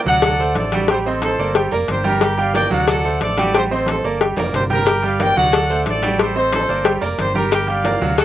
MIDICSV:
0, 0, Header, 1, 6, 480
1, 0, Start_track
1, 0, Key_signature, -2, "minor"
1, 0, Tempo, 331309
1, 1292, Time_signature, 4, 2, 24, 8
1, 11950, End_track
2, 0, Start_track
2, 0, Title_t, "Trumpet section"
2, 0, Program_c, 0, 61
2, 109, Note_on_c, 0, 78, 116
2, 117, Note_on_c, 0, 74, 85
2, 771, Note_off_c, 0, 78, 0
2, 776, Note_off_c, 0, 74, 0
2, 824, Note_on_c, 0, 74, 100
2, 831, Note_on_c, 0, 69, 74
2, 1288, Note_off_c, 0, 69, 0
2, 1298, Note_off_c, 0, 74, 0
2, 1301, Note_on_c, 0, 72, 85
2, 1305, Note_on_c, 0, 69, 66
2, 1407, Note_off_c, 0, 72, 0
2, 1411, Note_off_c, 0, 69, 0
2, 1546, Note_on_c, 0, 72, 89
2, 1558, Note_on_c, 0, 69, 85
2, 2442, Note_off_c, 0, 72, 0
2, 2448, Note_off_c, 0, 69, 0
2, 2744, Note_on_c, 0, 72, 100
2, 2747, Note_on_c, 0, 67, 73
2, 2962, Note_off_c, 0, 72, 0
2, 2964, Note_off_c, 0, 67, 0
2, 2985, Note_on_c, 0, 70, 98
2, 2986, Note_on_c, 0, 67, 80
2, 3426, Note_off_c, 0, 70, 0
2, 3427, Note_off_c, 0, 67, 0
2, 3466, Note_on_c, 0, 77, 87
2, 3468, Note_on_c, 0, 74, 79
2, 3688, Note_off_c, 0, 74, 0
2, 3700, Note_off_c, 0, 77, 0
2, 3705, Note_on_c, 0, 79, 112
2, 3706, Note_on_c, 0, 74, 88
2, 3917, Note_off_c, 0, 74, 0
2, 3923, Note_off_c, 0, 79, 0
2, 3934, Note_on_c, 0, 74, 81
2, 3934, Note_on_c, 0, 78, 102
2, 4603, Note_off_c, 0, 74, 0
2, 4603, Note_off_c, 0, 78, 0
2, 4673, Note_on_c, 0, 69, 78
2, 4674, Note_on_c, 0, 74, 95
2, 5110, Note_off_c, 0, 69, 0
2, 5111, Note_off_c, 0, 74, 0
2, 5159, Note_on_c, 0, 72, 85
2, 5160, Note_on_c, 0, 69, 66
2, 5261, Note_off_c, 0, 72, 0
2, 5262, Note_off_c, 0, 69, 0
2, 5394, Note_on_c, 0, 69, 71
2, 5397, Note_on_c, 0, 72, 74
2, 5913, Note_off_c, 0, 69, 0
2, 5915, Note_off_c, 0, 72, 0
2, 6601, Note_on_c, 0, 67, 73
2, 6605, Note_on_c, 0, 72, 91
2, 6702, Note_off_c, 0, 67, 0
2, 6706, Note_off_c, 0, 72, 0
2, 6842, Note_on_c, 0, 67, 77
2, 6851, Note_on_c, 0, 70, 103
2, 7274, Note_off_c, 0, 67, 0
2, 7279, Note_off_c, 0, 70, 0
2, 7313, Note_on_c, 0, 74, 81
2, 7324, Note_on_c, 0, 77, 101
2, 7526, Note_off_c, 0, 74, 0
2, 7532, Note_off_c, 0, 77, 0
2, 7554, Note_on_c, 0, 74, 92
2, 7561, Note_on_c, 0, 79, 127
2, 7770, Note_off_c, 0, 74, 0
2, 7786, Note_off_c, 0, 79, 0
2, 7787, Note_on_c, 0, 74, 77
2, 7787, Note_on_c, 0, 78, 107
2, 8449, Note_off_c, 0, 78, 0
2, 8450, Note_off_c, 0, 74, 0
2, 8522, Note_on_c, 0, 69, 87
2, 8522, Note_on_c, 0, 74, 101
2, 8954, Note_off_c, 0, 69, 0
2, 8954, Note_off_c, 0, 74, 0
2, 8996, Note_on_c, 0, 69, 83
2, 8999, Note_on_c, 0, 72, 93
2, 9208, Note_off_c, 0, 69, 0
2, 9209, Note_off_c, 0, 72, 0
2, 9233, Note_on_c, 0, 69, 82
2, 9234, Note_on_c, 0, 72, 105
2, 10123, Note_off_c, 0, 69, 0
2, 10124, Note_off_c, 0, 72, 0
2, 10427, Note_on_c, 0, 72, 98
2, 10435, Note_on_c, 0, 67, 75
2, 10642, Note_off_c, 0, 72, 0
2, 10646, Note_off_c, 0, 67, 0
2, 10664, Note_on_c, 0, 70, 92
2, 10673, Note_on_c, 0, 67, 86
2, 11104, Note_off_c, 0, 70, 0
2, 11108, Note_off_c, 0, 67, 0
2, 11142, Note_on_c, 0, 77, 98
2, 11152, Note_on_c, 0, 74, 80
2, 11841, Note_off_c, 0, 74, 0
2, 11854, Note_on_c, 0, 78, 104
2, 11855, Note_off_c, 0, 77, 0
2, 11858, Note_on_c, 0, 74, 80
2, 11950, Note_off_c, 0, 74, 0
2, 11950, Note_off_c, 0, 78, 0
2, 11950, End_track
3, 0, Start_track
3, 0, Title_t, "Violin"
3, 0, Program_c, 1, 40
3, 327, Note_on_c, 1, 69, 86
3, 833, Note_off_c, 1, 69, 0
3, 1041, Note_on_c, 1, 66, 70
3, 1549, Note_off_c, 1, 66, 0
3, 1773, Note_on_c, 1, 69, 86
3, 2277, Note_off_c, 1, 69, 0
3, 2486, Note_on_c, 1, 70, 83
3, 2992, Note_off_c, 1, 70, 0
3, 3210, Note_on_c, 1, 67, 91
3, 3883, Note_off_c, 1, 67, 0
3, 4169, Note_on_c, 1, 69, 91
3, 4674, Note_off_c, 1, 69, 0
3, 4886, Note_on_c, 1, 66, 72
3, 5392, Note_off_c, 1, 66, 0
3, 5617, Note_on_c, 1, 69, 82
3, 6119, Note_off_c, 1, 69, 0
3, 6327, Note_on_c, 1, 70, 86
3, 6833, Note_off_c, 1, 70, 0
3, 7043, Note_on_c, 1, 67, 94
3, 7718, Note_off_c, 1, 67, 0
3, 8006, Note_on_c, 1, 69, 91
3, 8512, Note_off_c, 1, 69, 0
3, 8731, Note_on_c, 1, 66, 62
3, 9235, Note_off_c, 1, 66, 0
3, 9452, Note_on_c, 1, 69, 84
3, 9955, Note_off_c, 1, 69, 0
3, 10169, Note_on_c, 1, 70, 80
3, 10673, Note_off_c, 1, 70, 0
3, 10888, Note_on_c, 1, 67, 101
3, 11560, Note_off_c, 1, 67, 0
3, 11850, Note_on_c, 1, 69, 91
3, 11950, Note_off_c, 1, 69, 0
3, 11950, End_track
4, 0, Start_track
4, 0, Title_t, "Grand piano"
4, 0, Program_c, 2, 0
4, 84, Note_on_c, 2, 54, 96
4, 93, Note_on_c, 2, 66, 95
4, 94, Note_on_c, 2, 78, 90
4, 481, Note_off_c, 2, 54, 0
4, 486, Note_off_c, 2, 66, 0
4, 487, Note_off_c, 2, 78, 0
4, 571, Note_on_c, 2, 57, 71
4, 576, Note_on_c, 2, 69, 82
4, 580, Note_on_c, 2, 72, 90
4, 965, Note_off_c, 2, 57, 0
4, 968, Note_off_c, 2, 69, 0
4, 970, Note_off_c, 2, 72, 0
4, 1057, Note_on_c, 2, 55, 99
4, 1060, Note_on_c, 2, 67, 100
4, 1063, Note_on_c, 2, 79, 101
4, 1252, Note_off_c, 2, 55, 0
4, 1254, Note_off_c, 2, 67, 0
4, 1256, Note_off_c, 2, 79, 0
4, 1299, Note_on_c, 2, 55, 90
4, 1302, Note_on_c, 2, 67, 85
4, 1308, Note_on_c, 2, 79, 90
4, 1493, Note_off_c, 2, 55, 0
4, 1495, Note_off_c, 2, 67, 0
4, 1499, Note_off_c, 2, 79, 0
4, 1538, Note_on_c, 2, 60, 87
4, 1544, Note_on_c, 2, 72, 85
4, 1544, Note_on_c, 2, 75, 87
4, 1930, Note_off_c, 2, 60, 0
4, 1933, Note_off_c, 2, 72, 0
4, 1933, Note_off_c, 2, 75, 0
4, 2019, Note_on_c, 2, 58, 81
4, 2020, Note_on_c, 2, 70, 79
4, 2021, Note_on_c, 2, 74, 82
4, 2214, Note_off_c, 2, 58, 0
4, 2214, Note_off_c, 2, 70, 0
4, 2215, Note_off_c, 2, 74, 0
4, 2250, Note_on_c, 2, 55, 81
4, 2260, Note_on_c, 2, 67, 89
4, 2263, Note_on_c, 2, 79, 94
4, 2448, Note_off_c, 2, 55, 0
4, 2454, Note_off_c, 2, 67, 0
4, 2456, Note_off_c, 2, 79, 0
4, 2489, Note_on_c, 2, 58, 80
4, 2489, Note_on_c, 2, 70, 84
4, 2499, Note_on_c, 2, 74, 76
4, 2884, Note_off_c, 2, 58, 0
4, 2884, Note_off_c, 2, 70, 0
4, 2890, Note_off_c, 2, 74, 0
4, 2957, Note_on_c, 2, 55, 106
4, 2962, Note_on_c, 2, 67, 107
4, 2966, Note_on_c, 2, 79, 97
4, 3357, Note_off_c, 2, 55, 0
4, 3360, Note_off_c, 2, 67, 0
4, 3363, Note_off_c, 2, 79, 0
4, 3442, Note_on_c, 2, 55, 92
4, 3449, Note_on_c, 2, 67, 96
4, 3458, Note_on_c, 2, 79, 90
4, 3644, Note_off_c, 2, 55, 0
4, 3647, Note_off_c, 2, 67, 0
4, 3653, Note_off_c, 2, 79, 0
4, 3674, Note_on_c, 2, 58, 87
4, 3682, Note_on_c, 2, 70, 80
4, 3691, Note_on_c, 2, 74, 90
4, 3878, Note_off_c, 2, 58, 0
4, 3883, Note_off_c, 2, 70, 0
4, 3889, Note_off_c, 2, 74, 0
4, 3918, Note_on_c, 2, 54, 104
4, 3925, Note_on_c, 2, 66, 92
4, 3928, Note_on_c, 2, 78, 99
4, 4318, Note_off_c, 2, 54, 0
4, 4322, Note_off_c, 2, 66, 0
4, 4324, Note_off_c, 2, 78, 0
4, 4411, Note_on_c, 2, 57, 77
4, 4414, Note_on_c, 2, 69, 81
4, 4424, Note_on_c, 2, 72, 73
4, 4805, Note_off_c, 2, 57, 0
4, 4807, Note_off_c, 2, 69, 0
4, 4813, Note_off_c, 2, 72, 0
4, 4898, Note_on_c, 2, 55, 97
4, 4902, Note_on_c, 2, 67, 100
4, 4909, Note_on_c, 2, 79, 105
4, 5093, Note_off_c, 2, 55, 0
4, 5095, Note_off_c, 2, 67, 0
4, 5099, Note_off_c, 2, 79, 0
4, 5135, Note_on_c, 2, 55, 81
4, 5139, Note_on_c, 2, 67, 86
4, 5145, Note_on_c, 2, 79, 88
4, 5331, Note_off_c, 2, 55, 0
4, 5333, Note_off_c, 2, 67, 0
4, 5337, Note_off_c, 2, 79, 0
4, 5378, Note_on_c, 2, 60, 82
4, 5380, Note_on_c, 2, 72, 88
4, 5381, Note_on_c, 2, 75, 76
4, 5770, Note_off_c, 2, 60, 0
4, 5771, Note_off_c, 2, 72, 0
4, 5771, Note_off_c, 2, 75, 0
4, 5859, Note_on_c, 2, 58, 89
4, 5862, Note_on_c, 2, 70, 72
4, 5865, Note_on_c, 2, 74, 83
4, 6053, Note_off_c, 2, 58, 0
4, 6055, Note_off_c, 2, 70, 0
4, 6057, Note_off_c, 2, 74, 0
4, 6094, Note_on_c, 2, 55, 76
4, 6095, Note_on_c, 2, 67, 81
4, 6101, Note_on_c, 2, 79, 89
4, 6290, Note_off_c, 2, 55, 0
4, 6291, Note_off_c, 2, 67, 0
4, 6294, Note_off_c, 2, 79, 0
4, 6342, Note_on_c, 2, 58, 84
4, 6346, Note_on_c, 2, 70, 81
4, 6349, Note_on_c, 2, 74, 82
4, 6731, Note_off_c, 2, 58, 0
4, 6734, Note_off_c, 2, 70, 0
4, 6735, Note_off_c, 2, 74, 0
4, 6808, Note_on_c, 2, 55, 93
4, 6809, Note_on_c, 2, 67, 101
4, 6813, Note_on_c, 2, 79, 99
4, 7203, Note_off_c, 2, 55, 0
4, 7204, Note_off_c, 2, 67, 0
4, 7206, Note_off_c, 2, 79, 0
4, 7285, Note_on_c, 2, 55, 90
4, 7287, Note_on_c, 2, 67, 98
4, 7294, Note_on_c, 2, 79, 94
4, 7485, Note_off_c, 2, 55, 0
4, 7486, Note_off_c, 2, 67, 0
4, 7490, Note_off_c, 2, 79, 0
4, 7529, Note_on_c, 2, 58, 82
4, 7532, Note_on_c, 2, 74, 79
4, 7534, Note_on_c, 2, 70, 79
4, 7727, Note_off_c, 2, 58, 0
4, 7729, Note_off_c, 2, 74, 0
4, 7730, Note_off_c, 2, 70, 0
4, 7775, Note_on_c, 2, 54, 92
4, 7785, Note_on_c, 2, 66, 86
4, 7786, Note_on_c, 2, 78, 87
4, 8167, Note_off_c, 2, 54, 0
4, 8173, Note_off_c, 2, 66, 0
4, 8174, Note_off_c, 2, 78, 0
4, 8259, Note_on_c, 2, 57, 88
4, 8261, Note_on_c, 2, 72, 82
4, 8264, Note_on_c, 2, 69, 84
4, 8649, Note_off_c, 2, 57, 0
4, 8650, Note_off_c, 2, 72, 0
4, 8652, Note_off_c, 2, 69, 0
4, 8728, Note_on_c, 2, 55, 101
4, 8732, Note_on_c, 2, 67, 101
4, 8739, Note_on_c, 2, 79, 110
4, 8926, Note_off_c, 2, 55, 0
4, 8929, Note_off_c, 2, 67, 0
4, 8932, Note_off_c, 2, 79, 0
4, 8968, Note_on_c, 2, 55, 77
4, 8979, Note_on_c, 2, 67, 81
4, 8979, Note_on_c, 2, 79, 83
4, 9166, Note_off_c, 2, 55, 0
4, 9172, Note_off_c, 2, 79, 0
4, 9173, Note_off_c, 2, 67, 0
4, 9204, Note_on_c, 2, 60, 77
4, 9211, Note_on_c, 2, 72, 84
4, 9211, Note_on_c, 2, 75, 73
4, 9600, Note_off_c, 2, 60, 0
4, 9605, Note_off_c, 2, 72, 0
4, 9605, Note_off_c, 2, 75, 0
4, 9690, Note_on_c, 2, 70, 76
4, 9693, Note_on_c, 2, 58, 82
4, 9698, Note_on_c, 2, 74, 77
4, 9887, Note_off_c, 2, 70, 0
4, 9889, Note_off_c, 2, 58, 0
4, 9892, Note_off_c, 2, 74, 0
4, 9914, Note_on_c, 2, 55, 88
4, 9917, Note_on_c, 2, 67, 89
4, 9923, Note_on_c, 2, 79, 88
4, 10117, Note_off_c, 2, 55, 0
4, 10119, Note_off_c, 2, 67, 0
4, 10123, Note_off_c, 2, 79, 0
4, 10155, Note_on_c, 2, 58, 74
4, 10163, Note_on_c, 2, 74, 91
4, 10164, Note_on_c, 2, 70, 85
4, 10554, Note_off_c, 2, 58, 0
4, 10560, Note_off_c, 2, 70, 0
4, 10560, Note_off_c, 2, 74, 0
4, 10647, Note_on_c, 2, 55, 91
4, 10649, Note_on_c, 2, 67, 110
4, 10658, Note_on_c, 2, 79, 101
4, 11042, Note_off_c, 2, 55, 0
4, 11043, Note_off_c, 2, 67, 0
4, 11048, Note_off_c, 2, 79, 0
4, 11114, Note_on_c, 2, 55, 80
4, 11124, Note_on_c, 2, 67, 85
4, 11126, Note_on_c, 2, 79, 93
4, 11317, Note_off_c, 2, 55, 0
4, 11323, Note_off_c, 2, 67, 0
4, 11324, Note_off_c, 2, 79, 0
4, 11367, Note_on_c, 2, 58, 83
4, 11369, Note_on_c, 2, 70, 82
4, 11372, Note_on_c, 2, 74, 92
4, 11565, Note_off_c, 2, 58, 0
4, 11566, Note_off_c, 2, 70, 0
4, 11568, Note_off_c, 2, 74, 0
4, 11611, Note_on_c, 2, 54, 96
4, 11612, Note_on_c, 2, 66, 89
4, 11623, Note_on_c, 2, 78, 85
4, 11950, Note_off_c, 2, 54, 0
4, 11950, Note_off_c, 2, 66, 0
4, 11950, Note_off_c, 2, 78, 0
4, 11950, End_track
5, 0, Start_track
5, 0, Title_t, "Fingered electric bass"
5, 0, Program_c, 3, 33
5, 86, Note_on_c, 3, 38, 102
5, 759, Note_off_c, 3, 38, 0
5, 807, Note_on_c, 3, 33, 108
5, 1928, Note_off_c, 3, 33, 0
5, 2007, Note_on_c, 3, 31, 108
5, 2456, Note_off_c, 3, 31, 0
5, 2489, Note_on_c, 3, 29, 85
5, 2714, Note_off_c, 3, 29, 0
5, 2724, Note_on_c, 3, 31, 113
5, 3846, Note_off_c, 3, 31, 0
5, 3924, Note_on_c, 3, 38, 107
5, 4598, Note_off_c, 3, 38, 0
5, 4652, Note_on_c, 3, 33, 104
5, 5770, Note_off_c, 3, 33, 0
5, 5854, Note_on_c, 3, 31, 95
5, 6300, Note_off_c, 3, 31, 0
5, 6326, Note_on_c, 3, 29, 85
5, 6552, Note_off_c, 3, 29, 0
5, 6572, Note_on_c, 3, 31, 94
5, 7690, Note_off_c, 3, 31, 0
5, 7777, Note_on_c, 3, 38, 102
5, 8444, Note_off_c, 3, 38, 0
5, 8494, Note_on_c, 3, 33, 99
5, 9610, Note_off_c, 3, 33, 0
5, 9688, Note_on_c, 3, 31, 94
5, 10136, Note_off_c, 3, 31, 0
5, 10167, Note_on_c, 3, 29, 78
5, 10392, Note_off_c, 3, 29, 0
5, 10403, Note_on_c, 3, 31, 99
5, 11524, Note_off_c, 3, 31, 0
5, 11614, Note_on_c, 3, 38, 88
5, 11950, Note_off_c, 3, 38, 0
5, 11950, End_track
6, 0, Start_track
6, 0, Title_t, "Drums"
6, 85, Note_on_c, 9, 63, 37
6, 85, Note_on_c, 9, 64, 82
6, 229, Note_off_c, 9, 63, 0
6, 229, Note_off_c, 9, 64, 0
6, 322, Note_on_c, 9, 56, 112
6, 324, Note_on_c, 9, 63, 33
6, 324, Note_on_c, 9, 64, 73
6, 467, Note_off_c, 9, 56, 0
6, 469, Note_off_c, 9, 63, 0
6, 469, Note_off_c, 9, 64, 0
6, 573, Note_on_c, 9, 63, 36
6, 718, Note_off_c, 9, 63, 0
6, 800, Note_on_c, 9, 63, 96
6, 804, Note_on_c, 9, 56, 62
6, 945, Note_off_c, 9, 63, 0
6, 948, Note_off_c, 9, 56, 0
6, 1044, Note_on_c, 9, 63, 95
6, 1045, Note_on_c, 9, 56, 73
6, 1189, Note_off_c, 9, 56, 0
6, 1189, Note_off_c, 9, 63, 0
6, 1277, Note_on_c, 9, 56, 116
6, 1287, Note_on_c, 9, 63, 38
6, 1422, Note_off_c, 9, 56, 0
6, 1432, Note_off_c, 9, 63, 0
6, 1533, Note_on_c, 9, 63, 38
6, 1678, Note_off_c, 9, 63, 0
6, 1763, Note_on_c, 9, 63, 90
6, 1766, Note_on_c, 9, 56, 69
6, 1908, Note_off_c, 9, 63, 0
6, 1911, Note_off_c, 9, 56, 0
6, 2008, Note_on_c, 9, 63, 35
6, 2152, Note_off_c, 9, 63, 0
6, 2245, Note_on_c, 9, 56, 125
6, 2249, Note_on_c, 9, 63, 36
6, 2390, Note_off_c, 9, 56, 0
6, 2394, Note_off_c, 9, 63, 0
6, 2488, Note_on_c, 9, 63, 39
6, 2633, Note_off_c, 9, 63, 0
6, 2727, Note_on_c, 9, 56, 72
6, 2728, Note_on_c, 9, 63, 89
6, 2872, Note_off_c, 9, 56, 0
6, 2873, Note_off_c, 9, 63, 0
6, 2971, Note_on_c, 9, 63, 97
6, 3116, Note_off_c, 9, 63, 0
6, 3203, Note_on_c, 9, 56, 120
6, 3210, Note_on_c, 9, 63, 37
6, 3348, Note_off_c, 9, 56, 0
6, 3355, Note_off_c, 9, 63, 0
6, 3449, Note_on_c, 9, 63, 36
6, 3594, Note_off_c, 9, 63, 0
6, 3689, Note_on_c, 9, 63, 95
6, 3694, Note_on_c, 9, 56, 69
6, 3834, Note_off_c, 9, 63, 0
6, 3839, Note_off_c, 9, 56, 0
6, 3935, Note_on_c, 9, 63, 34
6, 3935, Note_on_c, 9, 64, 85
6, 4080, Note_off_c, 9, 63, 0
6, 4080, Note_off_c, 9, 64, 0
6, 4167, Note_on_c, 9, 56, 119
6, 4171, Note_on_c, 9, 63, 36
6, 4171, Note_on_c, 9, 64, 64
6, 4312, Note_off_c, 9, 56, 0
6, 4316, Note_off_c, 9, 63, 0
6, 4316, Note_off_c, 9, 64, 0
6, 4408, Note_on_c, 9, 63, 33
6, 4553, Note_off_c, 9, 63, 0
6, 4648, Note_on_c, 9, 63, 83
6, 4649, Note_on_c, 9, 56, 79
6, 4793, Note_off_c, 9, 63, 0
6, 4794, Note_off_c, 9, 56, 0
6, 4890, Note_on_c, 9, 63, 101
6, 4891, Note_on_c, 9, 56, 75
6, 5035, Note_off_c, 9, 63, 0
6, 5036, Note_off_c, 9, 56, 0
6, 5137, Note_on_c, 9, 56, 116
6, 5138, Note_on_c, 9, 63, 37
6, 5281, Note_off_c, 9, 56, 0
6, 5283, Note_off_c, 9, 63, 0
6, 5374, Note_on_c, 9, 63, 36
6, 5518, Note_off_c, 9, 63, 0
6, 5595, Note_on_c, 9, 63, 84
6, 5620, Note_on_c, 9, 56, 74
6, 5740, Note_off_c, 9, 63, 0
6, 5765, Note_off_c, 9, 56, 0
6, 5840, Note_on_c, 9, 63, 32
6, 5984, Note_off_c, 9, 63, 0
6, 6090, Note_on_c, 9, 63, 36
6, 6098, Note_on_c, 9, 56, 119
6, 6235, Note_off_c, 9, 63, 0
6, 6243, Note_off_c, 9, 56, 0
6, 6331, Note_on_c, 9, 63, 112
6, 6476, Note_off_c, 9, 63, 0
6, 6573, Note_on_c, 9, 64, 88
6, 6579, Note_on_c, 9, 56, 64
6, 6718, Note_off_c, 9, 64, 0
6, 6724, Note_off_c, 9, 56, 0
6, 6809, Note_on_c, 9, 64, 93
6, 6954, Note_off_c, 9, 64, 0
6, 7044, Note_on_c, 9, 63, 35
6, 7052, Note_on_c, 9, 56, 123
6, 7189, Note_off_c, 9, 63, 0
6, 7197, Note_off_c, 9, 56, 0
6, 7292, Note_on_c, 9, 63, 35
6, 7437, Note_off_c, 9, 63, 0
6, 7529, Note_on_c, 9, 63, 96
6, 7532, Note_on_c, 9, 56, 70
6, 7674, Note_off_c, 9, 63, 0
6, 7676, Note_off_c, 9, 56, 0
6, 7774, Note_on_c, 9, 63, 34
6, 7774, Note_on_c, 9, 64, 90
6, 7919, Note_off_c, 9, 63, 0
6, 7919, Note_off_c, 9, 64, 0
6, 8015, Note_on_c, 9, 56, 110
6, 8025, Note_on_c, 9, 63, 31
6, 8160, Note_off_c, 9, 56, 0
6, 8170, Note_off_c, 9, 63, 0
6, 8257, Note_on_c, 9, 63, 37
6, 8402, Note_off_c, 9, 63, 0
6, 8490, Note_on_c, 9, 56, 69
6, 8494, Note_on_c, 9, 63, 97
6, 8635, Note_off_c, 9, 56, 0
6, 8639, Note_off_c, 9, 63, 0
6, 8732, Note_on_c, 9, 56, 70
6, 8736, Note_on_c, 9, 63, 91
6, 8876, Note_off_c, 9, 56, 0
6, 8881, Note_off_c, 9, 63, 0
6, 8974, Note_on_c, 9, 56, 118
6, 8982, Note_on_c, 9, 63, 37
6, 9119, Note_off_c, 9, 56, 0
6, 9126, Note_off_c, 9, 63, 0
6, 9215, Note_on_c, 9, 63, 42
6, 9360, Note_off_c, 9, 63, 0
6, 9454, Note_on_c, 9, 56, 76
6, 9458, Note_on_c, 9, 63, 108
6, 9599, Note_off_c, 9, 56, 0
6, 9603, Note_off_c, 9, 63, 0
6, 9698, Note_on_c, 9, 63, 34
6, 9843, Note_off_c, 9, 63, 0
6, 9924, Note_on_c, 9, 56, 127
6, 9947, Note_on_c, 9, 63, 36
6, 10069, Note_off_c, 9, 56, 0
6, 10092, Note_off_c, 9, 63, 0
6, 10177, Note_on_c, 9, 63, 33
6, 10322, Note_off_c, 9, 63, 0
6, 10406, Note_on_c, 9, 63, 92
6, 10411, Note_on_c, 9, 56, 68
6, 10551, Note_off_c, 9, 63, 0
6, 10556, Note_off_c, 9, 56, 0
6, 10643, Note_on_c, 9, 63, 88
6, 10788, Note_off_c, 9, 63, 0
6, 10893, Note_on_c, 9, 63, 35
6, 10896, Note_on_c, 9, 56, 111
6, 11038, Note_off_c, 9, 63, 0
6, 11041, Note_off_c, 9, 56, 0
6, 11132, Note_on_c, 9, 63, 38
6, 11277, Note_off_c, 9, 63, 0
6, 11363, Note_on_c, 9, 63, 98
6, 11369, Note_on_c, 9, 56, 76
6, 11508, Note_off_c, 9, 63, 0
6, 11514, Note_off_c, 9, 56, 0
6, 11617, Note_on_c, 9, 63, 35
6, 11617, Note_on_c, 9, 64, 84
6, 11762, Note_off_c, 9, 63, 0
6, 11762, Note_off_c, 9, 64, 0
6, 11848, Note_on_c, 9, 63, 35
6, 11854, Note_on_c, 9, 56, 116
6, 11950, Note_off_c, 9, 56, 0
6, 11950, Note_off_c, 9, 63, 0
6, 11950, End_track
0, 0, End_of_file